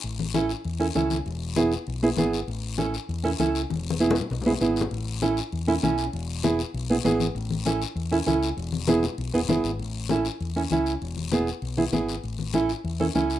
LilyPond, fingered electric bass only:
\new Staff \with { instrumentName = "Fingered electric bass" } { \clef bass \time 4/4 \key a \major \tempo 4 = 197 a,,2 e,4 cis,4 | e,,2 b,,4 gis,,4 | a,,2 e,4 cis,4 | e,,2 b,,4 gis,,4 |
a,,2 e,4 b,,4 | e,,2 b,,4 gis,,4 | a,,2 e,4 cis,4 | e,,2 b,,8 e,,8 fis,,8 gis,,8 |
a,,2 e,4 cis,4 | e,,2 b,,4 gis,,4 | a,,2 e,4 cis,4 | }